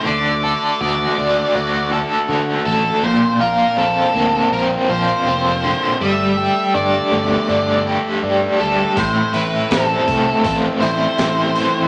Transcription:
<<
  \new Staff \with { instrumentName = "Lead electric guitar" } { \time 4/4 \key d \mixolydian \tempo 4 = 81 d''4 d''4. r4 a'8 | c''8 bes'8 a'4 bes'8 c''4. | e''4 d''4. r4 a'8 | c''8 b'8 a'4 a'8 c''4. | }
  \new Staff \with { instrumentName = "Tonewheel organ" } { \time 4/4 \key d \mixolydian << { <fis' a'>1 | <bes f'>1 | <g' a'>1 | <e' a'>1 | } \\ { d'1~ | d'1~ | d'1 | c'1 | } >> }
  \new Staff \with { instrumentName = "Tonewheel organ" } { \time 4/4 \key d \mixolydian a1 | c'1 | a1~ | a1 | }
  \new Staff \with { instrumentName = "Overdriven electric guitar" } { \time 4/4 \key d \mixolydian d8 a'8 fis'8 d'8 fis'8 a'8 fis'8 a8 | bes,8 f'8 c'8 bes8 c'8 f'8 c'8 d8 | g8 g'8 d'8 a8 d'8 g'8 d'8 g8 | a,8 e'8 c'8 a8 c'8 e'8 c'8 e8 | }
  \new Staff \with { instrumentName = "Fingered electric bass" } { \clef bass \time 4/4 \key d \mixolydian d,4 d,8 d,8 d,4 d8 a,,8 | bes,,8 bes,,8 bes,,8 d,8 bes,,8 bes,,8 f,,4 | g,,4 g,,8 g,,8 g,,4 g,8 d,8 | a,,8 a,,8 a,,8 c,8 a,,8 a,,8 a,,4 | }
  \new DrumStaff \with { instrumentName = "Drums" } \drummode { \time 4/4 r4 r4 r4 r4 | r4 r4 r4 r4 | r4 r4 r4 r4 | <hho bd>8 hho8 <hho sn>8 <hho bd>8 <hho bd>8 hho8 <hho sn>8 hho8 | }
>>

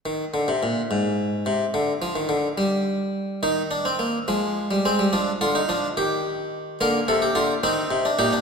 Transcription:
<<
  \new Staff \with { instrumentName = "Harpsichord" } { \time 6/8 \key ees \major \tempo 4. = 71 r2. | r2. | ees'8 d'16 c'16 bes8 aes4 c'8 | d'8 f'16 ees'16 d'8 g'4. |
bes4. c'8. d'16 ees'16 d'16 | }
  \new Staff \with { instrumentName = "Harpsichord" } { \clef bass \time 6/8 \key ees \major << { ees8 d16 c16 bes,8 aes,4 c8 | d8 f16 ees16 d8 g4. | r2. | r2. |
bes'8 a'16 g'16 f'8 ees'4 g'8 | } \\ { r2. | r2. | ees4. f8. g16 aes16 g16 | f8 d8 f8 ees4. |
d8 c8 d8 ees8 c8 bes,8 | } >> }
>>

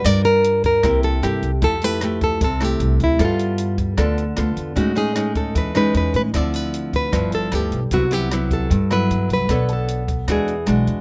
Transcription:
<<
  \new Staff \with { instrumentName = "Nylon-string guitar" } { \time 4/4 \key g \major \tempo 4 = 153 d''8 bes'4 bes'4 a'8 g'8. r16 | a'8 b'4 a'8 a'8 g'4 e'8 | f'4. r2 r8 | fis'8 gis'4 a'8 b'8 b'8 b'8 b'8 |
d''8 b'4 b'4 a'8 g'8. r16 | fis'8 g'4 a'4 b'4 b'8~ | b'8 a'4. gis'4 r4 | }
  \new Staff \with { instrumentName = "Nylon-string guitar" } { \time 4/4 \key g \major << { <d' f' bes'>2 <bes e' g'>4 <bes e' g'>8 r8 | <a e' g'>8 <a e' g'>8 <a e' g'>4 r8 <a e' g'>4. | <b f' a'>2 <b f' a'>8 r8 <b f' a'>4 | <gis cis' dis'>8 <gis cis' dis'>8 <gis cis' dis'>4. <gis cis' dis'>4. |
<f c' e'>2 <f b e'>4 <f b e'>8 r8 | <fis b e'>8 <fis b e'>8 <fis b e'>4 r8 <fis b e'>4. | <d' a' cis''>4. r8 <gis d' fis'>8 r8 <gis d' fis'>4 | } \\ { g2 c2 | f2 c2 | g2 d2 | a,2 e2 |
d2 g,2 | c2 g,2 | b2 e2 | } >> }
  \new Staff \with { instrumentName = "Upright bass" } { \clef bass \time 4/4 \key g \major g,2 c,4 g,8 c,8 | f,2 c,4 c,8 d,8 | g,2 d,4 d,8 e,8 | a,2 e,4 e,8 a,8 |
d,2 g,,4 d,8 b,,8 | c,2 g,4 g,8 c,8 | b,,2 e,4 b,,8 e,8 | }
  \new DrumStaff \with { instrumentName = "Drums" } \drummode { \time 4/4 <hh bd ss>8 hh8 hh8 <hh bd>8 <hh bd ss>8 hh8 <hh ss>8 hh8 | <hh bd>8 hh8 <hh ss>8 <hh bd>8 <hh bd>8 <hh ss>8 hh8 hh8 | <hh bd ss>8 hh8 hh8 <hh bd>8 <hh bd ss>8 hh8 <hh ss>8 hh8 | <hh bd>8 hh8 <hh ss>8 <hh bd>8 <hh bd>8 <hh ss>8 hh8 hh8 |
<hh bd ss>8 hh8 hh8 <hh bd>8 <hh bd ss>8 hh8 <hh ss>8 hh8 | <hh bd>8 hh8 <hh ss>8 <hh bd>8 <hh bd>8 <hh ss>8 hh8 hh8 | <hh bd ss>8 hh8 hh8 <hh bd>8 <hh bd ss>8 hh8 <hh ss>8 hh8 | }
>>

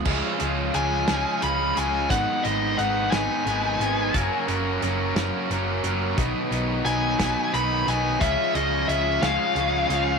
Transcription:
<<
  \new Staff \with { instrumentName = "Lead electric guitar" } { \time 6/8 \key cis \mixolydian \tempo 4. = 59 r4 gis''4 b''8 gis''8 | fis''8 dis''8 fis''8 gis''4.~ | gis''8 r2 r8 | r4 gis''4 b''8 gis''8 |
e''8 dis''8 e''8 eis''4. | }
  \new Staff \with { instrumentName = "String machine" } { \time 6/8 \key cis \mixolydian r2. | r2. | r2. | r2. |
<eis' cis'' gis'' cis'''>2. | }
  \new Staff \with { instrumentName = "Overdriven electric guitar" } { \time 6/8 \key cis \mixolydian <cis gis cis' eis' gis'>8 <cis gis cis' eis' gis'>8 <cis gis cis' eis' gis'>8 <cis gis cis' eis' gis'>8 <cis gis cis' eis' gis'>8 <cis gis cis' eis' gis'>8 | <gis, dis gis b dis' b'>8 <gis, dis gis b dis' b'>8 <gis, dis gis b dis' b'>8 <gis, dis gis b dis' b'>8 <gis, dis gis b dis' b'>8 <gis, dis gis b dis' b'>8 | <fis cis' fis' ais'>8 <fis cis' fis' ais'>8 <fis cis' fis' ais'>8 <fis cis' fis' ais'>8 <fis cis' fis' ais'>8 <fis cis' fis' ais'>8 | <b, dis fis b dis' b'>8 <b, dis fis b dis' b'>8 <b, dis fis b dis' b'>8 <b, dis fis b dis' b'>8 <b, dis fis b dis' b'>8 <b, dis fis b dis' b'>8 |
<cis gis cis' eis' gis'>8 <cis gis cis' eis' gis'>8 <cis gis cis' eis' gis'>8 <cis gis cis' eis' gis'>8 <cis gis cis' eis' gis'>8 <cis gis cis' eis' gis'>8 | }
  \new Staff \with { instrumentName = "Overdriven electric guitar" } { \clef bass \time 6/8 \key cis \mixolydian <cis eis gis cis'>8 <cis eis gis cis'>8 <cis eis gis cis'>8 <cis eis gis cis'>8 <cis eis gis cis'>8 <cis eis gis cis'>8 | <gis, dis gis b dis'>8 <gis, dis gis b dis'>8 <gis, dis gis b dis'>8 <gis, dis gis b dis'>8 <gis, dis gis b dis'>8 <gis, dis gis b dis'>8 | <fis, cis fis ais cis'>8 <fis, cis fis ais cis'>8 <fis, cis fis ais cis'>8 <fis, cis fis ais cis'>8 <fis, cis fis ais cis'>8 <fis, cis fis ais cis'>8 | <b, fis b dis'>8 <b, fis b dis'>8 <b, fis b dis'>8 <b, fis b dis'>8 <b, fis b dis'>8 <b, fis b dis'>8 |
<cis eis gis cis'>8 <cis eis gis cis'>8 <cis eis gis cis'>8 <cis eis gis cis'>8 <cis eis gis cis'>8 <cis eis gis cis'>8 | }
  \new Staff \with { instrumentName = "Picked electric bass" } { \clef bass \time 6/8 \key cis \mixolydian cis,16 r16 cis,8 cis,8 cis,16 r16 cis,8 cis,8 | gis,,16 r16 gis,,8 gis,,8 gis,,16 r16 gis,,8 gis,,8 | fis,,16 r16 fis,,8 fis,,8 fis,,16 r16 fis,,8 fis,,8 | b,,16 r16 b,,8 b,,8 b,,16 r16 b,,8 b,,8 |
cis,16 r16 cis,8 cis,8 cis,16 r16 cis,8 cis,8 | }
  \new DrumStaff \with { instrumentName = "Drums" } \drummode { \time 6/8 <cymc bd>8 hh8 hh8 <hh sn>8 hh8 hh8 | <hh bd>8 hh8 hh8 <hh sn>8 hh8 hh8 | <hh bd>8 hh8 hh8 <hh sn>8 hh8 hh8 | <hh bd>8 hh8 hh8 <hh bd sn>8 hh8 hh8 |
<hh bd>8 hh8 hh8 <hh sn>8 hh8 hh8 | }
>>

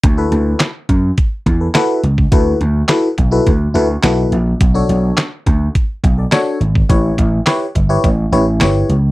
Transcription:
<<
  \new Staff \with { instrumentName = "FM electric piano" } { \time 4/4 \key d \major \tempo 4 = 105 r16 <e' fis' a' b'>4 r4. <a' b'>16 <e' fis' a' b'>8 r8 | <e' fis' a' b'>8 r8 <e' fis' a' b'>16 r8 <e' fis' a' b'>16 r8 <e' fis' a' b'>16 r16 <e' fis' a' b'>8 r8 | r16 <d' fis' a' cis''>4 r4. <a' d''>16 <d' fis' a' cis''>8 r8 | <e' g' b' cis''>8 r8 <e' g' b' cis''>16 r8 <e' g' b' cis''>16 r8 <e' g' b' cis''>16 r16 <e' g' b' cis''>8 r8 | }
  \new Staff \with { instrumentName = "Slap bass" } { \clef bass \time 4/4 \key d \major d,8 d,8 r8 fis,8 r8 e,8 r8 cis,8 | d,8 d,8 r8 b,,8 d,8 d,8 b,,8 bes,,8 | b,,8 b,,8 r8 d,8 r8 b,,8 r8 gis,,8 | a,,8 a,,8 r8 g,,8 a,,8 a,,8 g,,8 cis,8 | }
  \new DrumStaff \with { instrumentName = "Drums" } \drummode { \time 4/4 <hh bd>8 hh8 <hc hh sn>8 <hh bd>8 <hh bd>8 <hh bd>8 <hc hh sn>8 hh16 bd16 | <hh bd>8 hh8 <hc hh sn>8 <hh bd>8 <hh bd>8 hh8 <hc hh sn>8 hh8 | <hh bd>8 hh8 <hc hh sn>8 <hh bd>8 <hh bd>8 <hh bd>8 <hc hh sn>8 hh16 bd16 | <hh bd>8 <hh bd>8 <hc hh sn>8 <hh bd>8 <hh bd>8 hh8 <hc hh sn>8 hh8 | }
>>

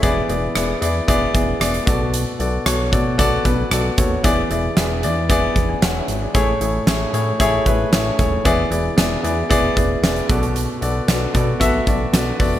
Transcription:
<<
  \new Staff \with { instrumentName = "Grand piano" } { \time 4/4 \key e \mixolydian \tempo 4 = 114 << { r1 | r1 | r2 r8. <d'' gis''>16 <cis'' fis''>16 <b' e''>8 <gis' d''>16~ | <gis' d''>16 r2. r8. |
r1 | r1 | } \\ { <b e' gis' d''>8 <b e' gis' d''>8 <b e' gis' d''>8 <b e' gis' d''>8 <b e' gis' d''>8 <b e' gis' d''>8 <b e' gis' d''>8 <b fis' a' d''>8~ | <b fis' a' d''>8 <b fis' a' d''>8 <b fis' a' cis''>8 <b fis' a' d''>8 <b fis' a' d''>8 <b fis' a' b'>8 <b fis' a' d''>8 <b fis' a' cis''>8 | <b e' gis' d''>8 <b e' gis' d''>8 <b e' gis' d''>8 <b e' gis' d''>8 <b e' gis' d''>8 r4. | <a e' gis' cis''>8 <a e' gis' cis''>8 <a e' gis' cis''>8 <a e' gis' cis''>8 <a e' gis' cis''>8 <a e' gis' b'>8 <a e' gis' cis''>8 <a e' gis' cis''>8 |
<b e' gis' d''>8 <b e' gis' d''>8 <b e' gis' d''>8 <b e' gis' d''>8 <b e' gis' d''>8 <b e' gis' d''>8 <b e' gis' d''>8 <b fis' a' d''>8~ | <b fis' a' d''>8 <b fis' a' d''>8 <b fis' a' d''>8 <b fis' a' d''>8 <b fis' a' e''>8 <b fis' a' d''>8 <b fis' a' d''>8 <b fis' a' d''>8 | } >> }
  \new Staff \with { instrumentName = "Grand piano" } { \clef bass \time 4/4 \key e \mixolydian e4. r2 b,8~ | b,4 r2. | e4. r2 r8 | a,4. r2 r8 |
e4. r2 b,8~ | b,4 r2. | }
  \new Staff \with { instrumentName = "Analog synth bass" } { \clef bass \time 4/4 \key e \mixolydian e,,8 e,,8 e,,8 e,8 e,,8 e,,8 e,,8 b,,8~ | b,,8 b,,8 b,,8 b,8 b,,8 b,,8 b,,8 dis,8 | e,,8 e,,8 e,,8 e,8 e,,8 e,,8 e,,8 gis,,8 | a,,8 a,,8 a,,8 a,8 a,,8 a,,8 a,,8 dis,,8 |
e,,8 e,,8 e,,8 e,8 e,,8 e,,8 e,,8 b,,8~ | b,,8 b,,8 b,,8 b,8 b,,8 b,,8 b,,8 f,,8 | }
  \new DrumStaff \with { instrumentName = "Drums" } \drummode { \time 4/4 <hh bd>8 hh8 <hh ss>8 hh8 <hh bd>8 <hh bd>8 <hh ss>16 hh16 <hh bd>8 | hh8 hh8 <hh ss>8 <hh bd>8 <hh bd>8 <hh bd>8 <hh ss>8 <hh bd>8 | <hh bd>8 hh8 <hh sn>8 hh8 <hh bd>8 <hh bd>8 <hh sn>8 hh8 | <hh bd>8 hh8 <hh sn>8 hh8 <hh bd>8 <hh bd>8 <hh sn>8 <hh bd>8 |
<hh bd>8 hh8 <hh sn>8 hh8 <hh bd>8 <hh bd>8 <hh sn>16 hh16 <hh bd>16 hh16 | hh8 hh8 <hh sn>8 <hh bd>8 <hh bd>8 <hh bd>8 <hh sn>8 <hho bd>8 | }
>>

